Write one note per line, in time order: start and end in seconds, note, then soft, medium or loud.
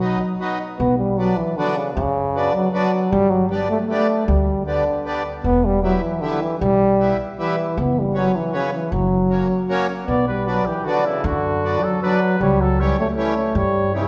0.00 0.13 B1 medium
0.00 0.18 F#3 soft
0.00 0.40 F#3 medium
0.00 0.19 B3 soft
0.00 0.19 D#4 medium
0.39 0.58 F#3 medium
0.39 0.58 B3 medium
0.39 0.59 D#4 medium
0.79 1.31 B1 medium
0.79 0.97 B3 loud
0.97 1.19 G3 medium
1.17 1.38 F#3 medium
1.17 1.36 F#3 soft
1.17 1.37 B3 soft
1.17 1.37 D4 medium
1.37 1.58 E3 medium
1.57 1.76 D3 medium
1.57 1.75 F#3 medium
1.57 1.76 B3 medium
1.57 1.76 D4 medium
1.75 1.93 C#3 medium
1.94 2.47 F#2 medium
1.94 2.55 C#3 loud
2.35 2.53 F#3 medium
2.35 2.53 B3 soft
2.35 2.54 D4 medium
2.53 2.71 F#3 medium
2.72 3.12 F#3 medium
2.72 2.91 F#3 medium
2.72 2.91 B3 medium
2.72 2.92 D4 medium
3.10 3.62 G1 medium
3.10 3.31 G3 loud
3.30 3.49 F#3 medium
3.50 3.59 G3 medium
3.50 3.68 G3 medium
3.50 3.68 B3 medium
3.50 3.69 D4 medium
3.69 3.78 A3 medium
3.87 4.07 G3 medium
3.87 4.24 A3 medium
3.87 4.07 B3 medium
3.87 4.07 D4 medium
4.26 4.78 D2 medium
4.26 4.63 G3 medium
4.65 5.21 D3 medium
4.65 4.84 G3 medium
4.65 4.84 B3 soft
4.65 4.85 D4 soft
5.05 5.23 G3 medium
5.05 5.23 B3 medium
5.05 5.23 D4 medium
5.44 5.95 E1 medium
5.44 5.66 B3 medium
5.65 5.82 G3 medium
5.83 5.98 F#3 medium
5.83 6.01 G3 medium
5.83 6.01 B3 soft
5.83 6.02 E4 medium
5.98 6.22 E3 medium
5.98 6.03 F#3 medium
6.21 6.43 D3 medium
6.21 6.40 G3 medium
6.21 6.40 B3 medium
6.21 6.40 E4 medium
6.41 6.59 E3 medium
6.60 7.11 B1 medium
6.60 7.14 G3 loud
6.99 7.17 G3 medium
6.99 7.17 B3 medium
6.99 7.18 E4 medium
7.38 7.81 E3 medium
7.38 7.56 G3 medium
7.38 7.56 B3 medium
7.38 7.56 E4 medium
7.77 8.27 F#1 medium
7.77 8.01 B3 medium
7.99 8.19 G3 medium
8.14 8.31 F#3 medium
8.14 8.32 B3 soft
8.14 8.32 C#4 medium
8.18 8.37 F#3 medium
8.36 8.56 E3 medium
8.52 8.73 C#3 medium
8.52 8.70 F#3 medium
8.52 8.70 B3 medium
8.52 8.71 C#4 medium
8.75 8.93 E3 medium
8.91 9.42 F#1 medium
8.91 9.69 F#3 medium
9.29 9.47 F#3 soft
9.29 9.48 A#3 soft
9.29 9.48 C#4 medium
9.69 9.87 F#3 medium
9.69 9.87 A#3 medium
9.69 9.87 C#4 medium
10.07 10.59 B1 medium
10.07 10.26 B3 medium
10.07 10.26 D5 medium
10.27 10.50 G3 medium
10.27 10.46 B4 medium
10.46 10.64 F#3 soft
10.46 10.69 F#3 medium
10.46 10.65 B3 soft
10.46 10.65 D4 medium
10.46 10.67 B4 medium
10.66 10.87 E3 medium
10.66 10.86 G4 medium
10.85 11.06 D3 medium
10.85 11.04 F#3 medium
10.85 11.04 B3 medium
10.85 11.04 D4 medium
10.85 11.07 F#4 medium
11.05 11.25 C#3 medium
11.05 11.26 E4 medium
11.23 11.74 F#2 medium
11.23 11.82 D3 medium
11.23 11.85 F#4 medium
11.64 11.81 F#3 medium
11.64 11.81 B3 medium
11.64 11.82 D4 medium
11.81 12.01 F#3 medium
11.81 12.02 A4 medium
12.02 12.20 F#3 medium
12.02 12.38 F#3 medium
12.02 12.20 B3 medium
12.02 12.20 D4 medium
12.02 12.38 B4 medium
12.39 12.90 C#2 medium
12.39 12.62 G3 loud
12.39 12.63 C#5 medium
12.60 12.82 F#3 medium
12.60 12.82 A4 medium
12.79 12.96 E3 soft
12.79 12.96 G3 medium
12.79 12.98 G3 medium
12.79 12.97 C#4 medium
12.79 12.99 C#5 medium
12.99 13.07 A3 medium
12.99 13.08 C#5 medium
13.16 13.34 E3 medium
13.16 13.34 G3 medium
13.16 13.57 A3 medium
13.16 13.35 C#4 medium
13.16 13.56 C#5 medium
13.55 14.06 G2 medium
13.55 13.94 G3 medium
13.55 13.94 C#5 medium
13.93 14.08 C#3 medium
13.93 14.08 E3 medium
13.93 14.08 G3 soft
13.93 14.08 C#4 soft
13.93 14.08 E4 medium